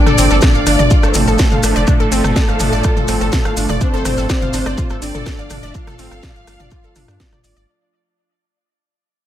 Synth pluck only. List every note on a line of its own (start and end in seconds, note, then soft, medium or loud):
0.07 0.15 A4 loud
0.18 0.22 C4 loud
0.31 0.39 A4 medium
0.43 0.46 D5 medium
0.55 0.61 F5 medium
0.67 0.73 D4 medium
0.79 0.85 D5 loud
0.91 0.94 F4 medium
1.03 1.09 A4 medium
1.15 1.19 C4 medium
1.28 1.36 A4 medium
1.39 1.43 A4 medium
1.52 1.57 F5 medium
1.63 1.69 D4 medium
1.76 1.82 D5 loud
1.88 1.97 D4 medium
2.00 2.09 A4 loud
2.12 2.15 C4 loud
2.24 2.33 A4 medium
2.36 2.40 D5 medium
2.48 2.54 F5 medium
2.60 2.66 D4 medium
2.73 2.78 D5 loud
2.84 2.88 F4 medium
2.97 3.03 A4 medium
3.09 3.12 C4 medium
3.21 3.30 A4 medium
3.33 3.36 A4 medium
3.45 3.51 F5 medium
3.57 3.63 D4 medium
3.69 3.75 D5 loud
3.81 3.90 D4 medium
3.94 4.02 A4 loud
4.05 4.09 C4 loud
4.18 4.26 A4 medium
4.30 4.33 D5 medium
4.42 4.48 F5 medium
4.54 4.60 D4 medium
4.66 4.72 D5 loud
4.78 4.82 F4 medium
4.90 4.96 A4 medium
5.02 5.06 C4 medium
5.15 5.23 A4 medium
5.26 5.30 A4 medium
5.39 5.44 F5 medium
5.51 5.57 D4 medium
5.63 5.69 D5 loud
5.75 5.84 D4 medium
5.87 5.96 A4 loud
5.99 6.03 C4 loud
6.12 6.20 A4 medium
6.23 6.27 D5 medium
6.36 6.41 F5 medium
6.47 6.53 D4 medium
6.60 6.66 D5 loud
6.72 6.75 F4 medium
6.84 6.90 A4 medium
6.96 7.05 D4 medium
7.08 7.14 D4 medium
7.20 7.29 D5 medium
7.32 7.38 D5 medium
7.44 7.53 D5 medium
7.57 7.65 D5 medium